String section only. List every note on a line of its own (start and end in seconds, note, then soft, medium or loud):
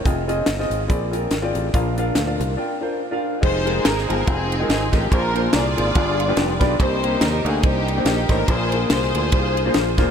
3.43 4.23 D#4 medium
3.43 4.23 G#4 medium
3.43 3.82 C5 loud
3.85 4.07 A#4 loud
4.08 4.25 A#4 medium
4.27 5.07 C4 medium
4.27 5.07 D#4 medium
4.27 4.69 G#4 loud
4.70 4.92 G#4 medium
4.92 5.10 G4 loud
5.12 5.92 D4 medium
5.12 5.53 F4 medium
5.12 5.54 A#4 loud
5.54 6.58 F4 medium
5.54 6.58 G#4 medium
5.54 6.62 D5 loud
6.80 7.60 D#4 loud
6.80 7.60 G4 loud
6.80 7.19 C5 loud
7.22 7.46 A#4 loud
7.47 7.63 G#4 medium
7.65 8.45 A#3 medium
7.65 8.45 D#4 medium
7.65 8.05 G4 loud
8.06 8.28 G4 medium
8.30 8.48 A#4 loud
8.49 8.90 F4 medium
8.49 8.90 G#4 medium
8.49 8.89 C5 loud
8.91 9.95 F4 medium
8.91 9.95 G#4 medium
8.91 9.95 C5 loud